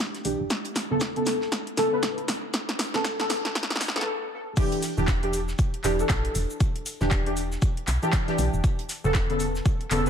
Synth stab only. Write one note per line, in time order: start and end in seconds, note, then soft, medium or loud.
0.00 0.22 E3 medium
0.00 0.22 D4 medium
0.00 0.23 G4 medium
0.24 0.43 E3 medium
0.24 0.43 D4 medium
0.24 0.43 G4 medium
0.90 0.99 C#3 medium
0.90 0.99 B3 medium
0.90 0.99 A4 loud
1.16 1.31 C#3 medium
1.16 1.31 B3 medium
1.16 1.31 A4 loud
1.77 1.89 C#3 medium
1.77 1.89 B3 medium
1.77 1.89 A4 loud
1.92 2.90 C#3 medium
1.92 2.91 B3 medium
1.92 2.91 B4 medium
2.94 3.16 C#3 loud
2.94 3.16 B3 medium
2.94 3.16 A4 loud
3.19 3.34 C#3 medium
3.19 3.34 B3 medium
3.19 3.34 A4 medium
3.95 4.06 C#3 loud
3.95 4.06 B3 medium
3.95 4.06 A4 loud
4.57 4.91 E3 loud
4.57 4.92 D4 loud
4.57 4.92 G4 loud
4.97 5.06 E3 loud
4.97 5.06 D4 medium
4.97 5.06 G4 loud
5.23 5.37 E3 medium
5.23 5.38 D4 medium
5.23 5.38 G4 loud
5.84 5.95 E3 loud
5.84 5.96 D4 medium
5.84 5.96 G4 loud
5.98 6.97 E3 medium
5.98 6.97 D4 medium
5.98 6.98 A4 medium
7.01 7.23 E3 loud
7.01 7.23 D4 medium
7.01 7.23 G4 loud
7.26 7.41 E3 medium
7.26 7.41 D4 medium
7.26 7.41 G4 medium
8.02 8.24 E3 loud
8.02 8.25 D4 medium
8.02 8.25 G4 loud
8.28 8.62 E3 loud
8.28 8.63 D4 medium
8.28 8.63 G4 loud
9.04 9.12 C#3 loud
9.04 9.13 B3 medium
9.04 9.13 A4 loud
9.29 9.44 C#3 medium
9.29 9.44 B3 medium
9.29 9.45 A4 loud
9.91 10.02 C#3 loud
9.91 10.02 B3 medium
9.91 10.03 A4 loud
10.05 10.10 C#3 medium
10.05 10.10 B3 medium